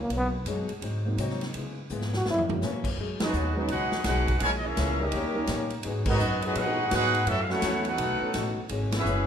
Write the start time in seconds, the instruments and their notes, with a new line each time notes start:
0.01 trombone A#3
0.10 upright bass B1, steel-string acoustic guitar B2 F#3 G#3 D#4, ride
0.17 trombone B3
0.45 upright bass F#2, steel-string acoustic guitar B2 F#3 G#3 D#4, hi-hat pedal, ride
0.69 muted upright bass stroke, ride
0.81 steel-string acoustic guitar G#2 F#3 C4 D#4, upright bass G#2, ride
1.05 grand piano F#3 G#3 A#3 C4 D#4
1.17 steel-string acoustic guitar G#2 F#3 C4 D#4, upright bass C3, hi-hat pedal, ride
1.30 snare
1.41 snare, ride
1.54 steel-string acoustic guitar C#3 G#3 B3, upright bass C#3, ride
1.58 steel-string acoustic guitar E4
1.89 upright bass G#2, steel-string acoustic guitar C#3 G#3 B3 E4, hi-hat pedal
2.01 snare
2.13 trombone F#4, snare
2.25 steel-string acoustic guitar F#2 E3 A#3 C#4, upright bass F#2, snare
2.31 trombone E4
2.38 floor tom
2.49 grand piano F#3 G#3 A#3 C#4 E4, floor tom
2.61 steel-string acoustic guitar F#2 E3 A#3 C#4, upright bass A#2, snare, hi-hat pedal
2.84 kick, crash
2.97 upright bass F#2, steel-string acoustic guitar B2 F#3 G#3 D#4
3.20 trombone section F#3 G#3 D#4, grand piano F#3 G#3 B3 C#4 D#4, trumpet section B3 F#4 G#4 D#5, muted upright bass stroke, snare, ride
3.33 upright bass D#2, steel-string acoustic guitar B2 F#3 G#3 D#4, hi-hat pedal
3.55 grand piano F#3 G#3 B3 C#4 D#4, trombone section F#3 G#3 D#4, trumpet section B3 F#4 G#4 D#5
3.68 upright bass C#2, steel-string acoustic guitar B2 F#3 G#3, trombone section G#3 D#4 F#4, trumpet section D#4 G#4 B4 F#5, ride
3.72 steel-string acoustic guitar D#4
3.92 muted upright bass stroke, snare
4.04 upright bass B1, steel-string acoustic guitar B2 F#3 G#3, trombone section G#3 D#4 F#4, trumpet section D#4 G#4 B4 F#5, snare, hi-hat pedal, ride
4.08 steel-string acoustic guitar D#4
4.27 kick, ride
4.39 upright bass A#1, steel-string acoustic guitar A#2 E3, trombone section C#3 E3 G#3, ride
4.43 steel-string acoustic guitar G#3 C#4, trumpet section E4 A#4 C#5 G#5
4.57 trumpet section D#5
4.64 trombone section G#3 C#4 E4, trumpet section C#4 G#4 A#4 E5
4.77 upright bass C#2, steel-string acoustic guitar A#2 E3 G#3 C#4, snare, hi-hat pedal, ride
4.99 trombone section G3 A#3 C#4 D#4 A#4, trumpet section C#4 G4 A#4 D#5
5.12 upright bass D#2, steel-string acoustic guitar D#3 A#3 C#4, ride
5.16 steel-string acoustic guitar G4
5.34 grand piano G3 A#3 C#4 D#4 A#4
5.47 upright bass A#2, steel-string acoustic guitar D#3 A#3 C#4 G4, snare, hi-hat pedal, ride
5.70 ride
5.83 steel-string acoustic guitar G#2 F#3 B3 D#4, upright bass G#2, trombone section F#3 B3 D#4 G#4, ride
6.06 trombone section F#3 B3 D#4, grand piano G#3 B3 D#4 F#4 A#4, trumpet section B3, kick, crash
6.10 trumpet section F#4 G#4 D#5
6.19 upright bass F#2, steel-string acoustic guitar G#2 F#3 B3 D#4, hi-hat pedal
6.42 trombone section F#3 B3 D#4 G#4 B4, trumpet section B3 F#4 G#4 D#5, ride
6.55 steel-string acoustic guitar G#2 F#3 B3 D#4, upright bass A#2, trombone section G#3 D#4 F#4, trumpet section D#4 G#4 B4 F#5, ride
6.89 steel-string acoustic guitar G#2 F#3 B3, upright bass G#2, trombone section B3 D#4 F#4, snare, hi-hat pedal, ride
6.93 trumpet section D#4 G#4 B4 F#5, steel-string acoustic guitar D#4
7.14 ride
7.26 upright bass F#2, steel-string acoustic guitar F#2 E3 A3 C#4, trombone section A3 C#4 E4, trumpet section C#4 F#4 A4 E5, ride
7.41 trumpet section F5
7.49 trombone section F#3 A3 C#4 E4 F#4 A4, trumpet section E4 A4 C#5 F#5, snare
7.62 upright bass E2, steel-string acoustic guitar F#2 E3 A3 C#4, snare, hi-hat pedal, ride
7.85 trombone section A3 D#4 F#4, trumpet section D#4 A4 B4 F#5, ride
7.98 upright bass B1, steel-string acoustic guitar B2 A3 D#4, ride
8.02 steel-string acoustic guitar F#4
8.20 grand piano B3 C#4 D#4 F#4 A4, muted upright bass stroke
8.34 upright bass A1, steel-string acoustic guitar B2 A3 D#4 F#4, snare, hi-hat pedal, ride
8.58 muted upright bass stroke
8.69 upright bass G#1, steel-string acoustic guitar E3 G#3 C#4 F#4, ride
8.92 trombone section B3 C#4 E4, snare, ride
8.99 trumpet section C#4 G#4 B4 E5
9.05 upright bass F#1, steel-string acoustic guitar E3 G#3 C#4 F#4, hi-hat pedal